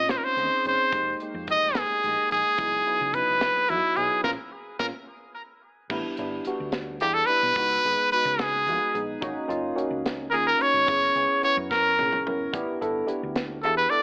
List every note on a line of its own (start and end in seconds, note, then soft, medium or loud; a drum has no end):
0.00 0.16 A#1 medium
0.00 0.33 C4 medium
0.00 0.33 C#4 medium
0.00 0.33 D#4 medium
0.00 0.33 F4 medium
0.00 0.12 D#5 medium
0.09 0.19 C5 medium
0.09 snare medium
0.09 closed hi-hat medium
0.18 0.26 A#4 medium
0.24 0.65 C5 medium
0.24 muted fingered electric bass stroke soft
0.37 0.47 D#2 medium
0.37 0.62 C4 medium
0.37 0.63 C#4 soft
0.37 0.63 D#4 medium
0.37 0.63 G#4 medium
0.37 closed hi-hat medium
0.64 0.75 F#1 medium
0.64 0.92 C4 medium
0.64 0.92 C#4 soft
0.64 0.93 D#4 soft
0.64 0.93 G#4 medium
0.64 1.19 C5 medium
0.64 closed hi-hat medium
0.92 1.13 F1 medium
0.92 1.18 G#3 medium
0.92 1.18 A#3 medium
0.92 1.18 D#4 medium
0.92 1.18 G4 medium
0.92 kick medium
0.92 closed hi-hat medium
1.20 1.46 G#3 medium
1.20 1.46 A#3 medium
1.20 1.46 D#4 medium
1.20 1.47 G4 medium
1.20 closed hi-hat medium
1.34 1.55 F2 medium
1.47 1.99 G#3 medium
1.47 1.99 A#3 medium
1.47 1.99 D#4 soft
1.47 1.99 G4 medium
1.47 1.79 D#5 medium
1.47 kick medium
1.47 closed hi-hat medium
1.62 1.83 F1 medium
1.75 2.32 G#4 medium
1.75 snare loud
1.75 closed hi-hat medium
1.90 muted fingered electric bass stroke soft
2.03 2.14 A#1 medium
2.03 2.29 G#3 medium
2.03 2.29 A#3 medium
2.03 2.29 D#4 medium
2.03 2.29 G4 medium
2.03 closed hi-hat medium
2.30 2.42 A#1 medium
2.30 2.58 G#3 medium
2.30 2.58 A#3 medium
2.30 2.57 D#4 medium
2.30 2.59 G#4 medium
2.30 3.16 G#4 medium
2.30 closed hi-hat medium
2.57 2.79 C#2 medium
2.57 2.83 F#3 medium
2.57 2.83 B3 medium
2.57 2.84 D#4 medium
2.57 2.83 E4 medium
2.57 kick loud
2.57 closed hi-hat medium
2.86 3.12 F#3 medium
2.86 3.12 B3 medium
2.86 3.12 D#4 medium
2.86 3.12 E4 medium
2.86 closed hi-hat medium
3.01 3.22 C#3 medium
3.13 3.65 F#3 medium
3.13 3.65 B3 medium
3.13 3.65 D#4 medium
3.13 3.65 E4 medium
3.13 3.71 B4 medium
3.13 kick medium
3.13 closed hi-hat medium
3.29 3.49 C#2 medium
3.41 snare medium
3.41 closed hi-hat medium
3.57 muted fingered electric bass stroke soft
3.69 3.80 F#2 medium
3.69 3.94 F#3 medium
3.69 3.95 B3 soft
3.69 3.94 D#4 medium
3.69 3.98 E4 medium
3.69 3.95 F#4 medium
3.69 closed hi-hat medium
3.96 4.08 B1 medium
3.96 4.25 F#3 medium
3.96 4.25 B3 medium
3.96 4.24 D#4 medium
3.96 4.25 E4 medium
3.96 4.23 G#4 medium
3.96 closed hi-hat medium
4.23 4.35 A#1 medium
4.23 4.33 A#3 medium
4.23 4.33 C#4 medium
4.23 4.33 F4 medium
4.23 4.31 A#4 medium
4.23 kick medium
4.23 snare medium
4.79 4.90 A#1 medium
4.79 4.89 A#3 medium
4.79 4.89 C#4 medium
4.79 4.89 F4 medium
4.79 4.86 A#4 medium
4.79 kick medium
4.79 snare medium
5.90 6.01 A1 medium
5.90 6.15 G3 medium
5.90 6.15 B3 medium
5.90 6.16 D4 medium
5.90 6.16 E4 medium
5.90 kick medium
5.90 crash medium
6.17 6.39 G1 medium
6.17 6.44 G3 medium
6.17 6.44 B3 medium
6.17 6.44 D4 medium
6.17 6.44 E4 medium
6.17 closed hi-hat medium
6.45 6.97 G3 medium
6.45 6.97 B3 medium
6.45 6.97 D4 medium
6.45 6.97 F#4 medium
6.45 muted fingered electric bass stroke soft
6.45 closed hi-hat medium
6.60 7.02 D2 medium
6.72 snare loud
6.72 closed hi-hat medium
7.00 7.22 E2 medium
7.00 7.26 G3 medium
7.00 7.27 B3 medium
7.00 7.27 D4 medium
7.00 7.27 E4 medium
7.00 7.15 G4 medium
7.00 closed hi-hat medium
7.14 7.28 A4 medium
7.26 7.56 G3 medium
7.26 7.56 B3 soft
7.26 7.56 D4 medium
7.26 7.57 E4 medium
7.26 8.10 B4 loud
7.26 closed hi-hat medium
7.43 7.53 B1 medium
7.55 7.77 C#2 loud
7.55 7.82 G#3 medium
7.55 7.82 B3 medium
7.55 7.82 D#4 medium
7.55 7.82 F#4 medium
7.55 kick loud
7.55 closed hi-hat medium
7.84 7.95 G#1 medium
7.84 8.10 G#3 medium
7.84 8.10 B3 medium
7.84 8.10 D#4 medium
7.84 8.10 G#4 medium
7.84 closed hi-hat medium
8.12 8.62 G#3 medium
8.12 8.62 B3 medium
8.12 8.63 D#4 medium
8.12 8.63 F#4 medium
8.12 8.43 B4 medium
8.12 muted fingered electric bass stroke soft
8.12 closed hi-hat medium
8.25 8.68 C#3 loud
8.39 9.02 G#4 medium
8.39 kick medium
8.39 snare loud
8.39 closed hi-hat medium
8.66 8.77 F2 medium
8.66 8.92 G#3 medium
8.66 8.93 B3 medium
8.66 8.93 D#4 medium
8.66 8.93 F#4 medium
8.66 closed hi-hat medium
8.94 9.15 A#1 medium
8.94 9.22 G#3 medium
8.94 9.22 B3 medium
8.94 9.20 D#4 medium
8.94 9.22 G#4 medium
8.94 closed hi-hat medium
9.21 9.33 G#1 medium
9.21 9.47 A#3 medium
9.21 9.47 C#4 medium
9.21 9.47 D#4 medium
9.21 9.47 F#4 loud
9.21 kick loud
9.21 closed hi-hat medium
9.48 9.70 F#1 medium
9.48 9.74 A#3 medium
9.48 9.74 C#4 medium
9.48 9.74 D#4 medium
9.48 9.75 F4 medium
9.48 closed hi-hat medium
9.75 10.27 A#3 medium
9.75 10.27 C#4 medium
9.75 10.27 D#4 medium
9.75 10.27 F#4 medium
9.75 muted fingered electric bass stroke soft
9.75 closed hi-hat medium
9.91 10.32 C#2 medium
10.06 snare loud
10.06 closed hi-hat medium
10.30 10.53 D#2 medium
10.30 10.57 A#3 medium
10.30 10.57 C#4 medium
10.30 10.58 D#4 medium
10.30 10.58 F4 medium
10.30 10.46 G#4 medium
10.30 10.35 A#4 medium
10.30 closed hi-hat medium
10.47 10.63 A#4 medium
10.58 10.87 A#3 medium
10.58 10.86 C#4 medium
10.58 10.87 D#4 medium
10.58 10.87 F#4 medium
10.58 11.44 C#5 loud
10.58 closed hi-hat medium
10.74 10.84 G#1 medium
10.86 11.09 F#1 loud
10.86 11.12 B3 medium
10.86 11.12 C#4 medium
10.86 11.13 E4 medium
10.86 11.13 G#4 medium
10.86 kick loud
10.86 closed hi-hat medium
11.15 11.26 C#2 medium
11.15 11.40 B3 medium
11.15 11.40 C#4 medium
11.15 11.41 E4 medium
11.15 11.41 G#4 medium
11.15 closed hi-hat medium
11.43 11.93 B3 medium
11.43 11.93 C#4 medium
11.43 11.93 E4 medium
11.43 11.93 B4 medium
11.43 11.56 C#5 medium
11.43 muted fingered electric bass stroke soft
11.43 closed hi-hat medium
11.57 12.01 F#2 medium
11.71 12.29 A#4 medium
11.71 kick medium
11.71 snare medium
11.99 12.09 A#1 medium
11.99 12.24 B3 medium
11.99 12.24 C#4 medium
11.99 12.24 E4 soft
11.99 12.24 G#4 medium
11.99 high tom medium
12.13 mid tom medium
12.26 12.47 F#1 medium
12.26 12.52 B3 medium
12.26 12.54 C#4 medium
12.26 12.52 E4 medium
12.26 12.54 A#4 medium
12.26 mid tom medium
12.53 12.64 A1 medium
12.53 12.78 B3 medium
12.53 12.78 D4 medium
12.53 12.78 E4 medium
12.53 12.79 G4 medium
12.53 kick loud
12.53 closed hi-hat medium
12.81 13.02 G1 medium
12.81 13.05 B3 medium
12.81 13.06 D4 medium
12.81 13.06 E4 medium
12.81 13.06 A4 medium
12.81 closed hi-hat medium
13.06 13.58 B3 medium
13.06 13.58 D4 medium
13.06 13.58 E4 medium
13.06 13.58 G4 medium
13.06 muted fingered electric bass stroke soft
13.06 closed hi-hat medium
13.23 13.65 D2 medium
13.36 snare loud
13.36 closed hi-hat medium
13.63 13.85 E2 medium
13.63 13.88 B3 medium
13.63 13.89 D4 medium
13.63 13.89 E4 soft
13.63 13.89 G4 medium
13.63 13.76 A4 medium
13.63 closed hi-hat medium
13.77 13.91 B4 medium
13.90 14.03 B3 medium
13.90 14.03 D4 medium
13.90 14.03 E4 medium
13.90 14.03 A4 medium
13.90 14.03 D5 medium
13.90 closed hi-hat medium